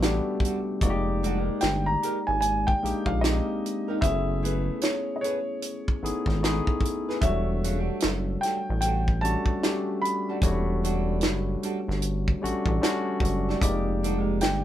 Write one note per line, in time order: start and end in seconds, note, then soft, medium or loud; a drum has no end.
0.00 0.20 A1 medium
0.00 0.02 G3 medium
0.00 0.69 G3 medium
0.00 0.02 A3 medium
0.00 0.69 A3 medium
0.00 0.03 B3 medium
0.00 0.70 B3 medium
0.00 0.04 D4 medium
0.00 0.70 D4 medium
0.00 0.83 F#4 medium
0.00 0.70 G4 medium
0.00 0.37 D5 medium
0.00 snare loud
0.00 closed hi-hat medium
0.40 0.57 G3 medium
0.40 0.58 D4 medium
0.40 kick medium
0.45 0.58 F#4 medium
0.45 0.58 A4 medium
0.45 closed hi-hat medium
0.81 1.49 F1 medium
0.81 2.08 G#3 medium
0.81 2.08 A#3 medium
0.81 2.08 D#4 medium
0.81 0.91 F#4 medium
0.81 2.08 D5 medium
0.81 kick loud
0.81 closed hi-hat medium
0.90 2.12 G4 loud
1.23 1.38 G3 medium
1.23 1.38 D4 medium
1.23 1.39 F#4 medium
1.23 1.39 A4 medium
1.23 closed hi-hat medium
1.38 1.60 G#3 medium
1.38 1.60 D#4 medium
1.38 1.61 G4 medium
1.38 1.61 A#4 medium
1.61 1.96 G1 medium
1.61 1.87 G5 medium
1.61 snare medium
1.61 closed hi-hat medium
1.86 2.28 A#5 medium
2.02 2.17 G#3 medium
2.02 2.17 D#4 medium
2.02 2.18 G4 medium
2.02 2.18 A#4 medium
2.02 closed hi-hat medium
2.27 2.74 G#1 medium
2.27 2.39 G#5 medium
2.41 2.67 G#5 medium
2.41 closed hi-hat medium
2.67 3.08 G5 medium
2.67 kick medium
2.82 2.93 A#1 soft
2.82 3.16 G#3 medium
2.82 3.16 A#3 medium
2.82 3.16 D4 medium
2.82 3.17 D#4 medium
2.82 3.17 G4 medium
2.82 closed hi-hat medium
3.06 3.41 A#1 medium
3.06 3.22 F5 medium
3.06 kick medium
3.21 3.89 G#3 medium
3.21 3.89 A#3 medium
3.21 3.89 C4 medium
3.21 3.90 D#4 medium
3.21 3.90 G4 medium
3.21 3.98 D#5 medium
3.21 snare loud
3.21 closed hi-hat medium
3.66 closed hi-hat medium
3.88 3.97 G#3 soft
3.88 3.97 D#4 medium
3.88 3.97 G4 medium
3.88 3.96 A#4 medium
4.01 4.70 F#1 loud
4.01 4.10 G#3 medium
4.01 5.28 B3 medium
4.01 5.28 C#4 medium
4.01 5.29 E4 medium
4.01 5.29 G#4 medium
4.01 4.78 E5 medium
4.01 kick loud
4.01 closed hi-hat medium
4.09 5.31 A3 medium
4.43 4.80 A3 medium
4.43 4.80 E4 medium
4.43 4.81 G#4 medium
4.43 4.81 B4 medium
4.43 closed hi-hat medium
4.81 5.14 C#5 medium
4.81 snare loud
4.81 closed hi-hat medium
5.16 5.22 D#5 soft
5.21 5.37 A3 medium
5.21 5.38 E4 medium
5.21 5.38 G#4 medium
5.21 6.78 C#5 medium
5.21 closed hi-hat medium
5.25 5.39 B4 medium
5.62 closed hi-hat medium
5.88 kick medium
6.02 6.13 G#1 soft
6.02 6.36 A3 medium
6.02 6.36 B3 medium
6.02 6.36 D#4 medium
6.02 6.36 E4 medium
6.02 6.37 G#4 medium
6.02 closed hi-hat medium
6.26 6.61 G#1 medium
6.26 kick medium
6.26 snare soft
6.43 7.09 A3 medium
6.43 7.10 B3 medium
6.43 7.10 D#4 medium
6.43 7.10 E4 medium
6.43 7.10 G#4 medium
6.43 snare medium
6.43 closed hi-hat medium
6.67 kick medium
6.81 kick medium
6.85 closed hi-hat medium
7.09 7.18 A3 soft
7.09 7.17 E4 medium
7.09 7.17 G#4 medium
7.09 7.17 B4 medium
7.09 snare soft
7.21 7.90 E1 loud
7.21 7.30 F#3 medium
7.21 8.48 A3 medium
7.21 8.49 D4 medium
7.21 8.49 F#4 medium
7.21 8.48 C#5 medium
7.21 8.38 E5 medium
7.21 kick loud
7.21 closed hi-hat medium
7.29 8.51 G3 medium
7.64 7.79 F#3 medium
7.64 7.80 C#4 medium
7.64 7.80 F4 medium
7.64 7.81 G#4 medium
7.64 closed hi-hat medium
7.79 8.00 G3 medium
7.79 8.01 D4 medium
7.79 8.01 F#4 medium
7.79 8.02 A4 medium
8.00 8.37 F#1 medium
8.00 snare loud
8.00 closed hi-hat medium
8.41 8.58 G3 medium
8.41 8.58 D4 medium
8.41 8.79 G5 medium
8.41 closed hi-hat medium
8.45 8.59 F#4 medium
8.45 8.59 A4 medium
8.45 snare soft
8.70 9.36 A1 medium
8.81 9.02 G3 medium
8.81 9.02 D4 medium
8.81 9.23 G5 medium
8.81 closed hi-hat medium
8.85 9.03 F#4 medium
8.85 9.03 A4 medium
9.08 kick medium
9.21 9.56 G3 medium
9.21 9.56 A3 medium
9.21 9.57 C#4 medium
9.21 9.57 D4 medium
9.21 9.57 F#4 medium
9.21 10.04 A5 medium
9.21 closed hi-hat medium
9.46 kick medium
9.63 10.29 G3 medium
9.63 10.30 A3 medium
9.63 10.30 C#4 medium
9.63 10.30 D4 medium
9.63 10.30 G4 medium
9.63 snare loud
9.63 closed hi-hat medium
10.02 12.38 B5 medium
10.02 closed hi-hat medium
10.29 10.38 G3 soft
10.29 10.37 D4 medium
10.29 10.37 F#4 medium
10.29 10.37 A4 medium
10.42 11.25 E1 loud
10.42 11.68 G3 medium
10.42 11.68 A3 medium
10.42 11.69 D4 medium
10.42 11.69 F#4 medium
10.42 11.68 C#5 medium
10.42 kick loud
10.42 closed hi-hat medium
10.84 11.20 G3 medium
10.84 11.21 D4 medium
10.84 11.21 F#4 medium
10.84 11.21 A4 medium
10.84 closed hi-hat medium
11.21 11.56 F#1 medium
11.21 snare loud
11.21 closed hi-hat medium
11.63 11.77 G3 medium
11.63 11.78 D4 medium
11.63 11.78 F#4 medium
11.63 11.78 A4 medium
11.63 closed hi-hat medium
11.88 12.34 G1 medium
11.88 snare soft
12.02 closed hi-hat medium
12.28 kick medium
12.42 12.53 A1 soft
12.42 12.75 G3 medium
12.42 12.76 A3 medium
12.42 12.76 C#4 medium
12.42 12.76 D4 medium
12.42 12.77 F#4 medium
12.42 closed hi-hat medium
12.66 12.79 A1 medium
12.66 kick medium
12.81 13.49 G3 medium
12.81 13.49 A3 medium
12.81 13.49 C#4 medium
12.81 13.50 D4 medium
12.81 13.50 F#4 medium
12.81 snare loud
12.81 closed hi-hat medium
13.20 13.55 F#1 loud
13.20 kick medium
13.25 closed hi-hat medium
13.49 13.57 G3 soft
13.49 13.57 D4 medium
13.49 13.57 F#4 medium
13.49 13.57 A4 medium
13.49 snare soft
13.61 14.44 F1 loud
13.61 14.64 G#3 medium
13.61 14.64 A#3 medium
13.61 14.64 D#4 medium
13.61 14.64 G4 loud
13.61 14.64 D5 medium
13.61 kick loud
13.61 closed hi-hat medium
14.03 14.18 G3 medium
14.03 14.19 D4 medium
14.03 14.20 F#4 medium
14.03 14.20 A4 medium
14.03 closed hi-hat medium
14.18 14.40 G#3 medium
14.18 14.40 D#4 medium
14.18 14.41 G4 medium
14.18 14.41 A#4 medium
14.41 14.64 G1 medium
14.41 14.64 G5 medium
14.41 snare loud
14.41 closed hi-hat medium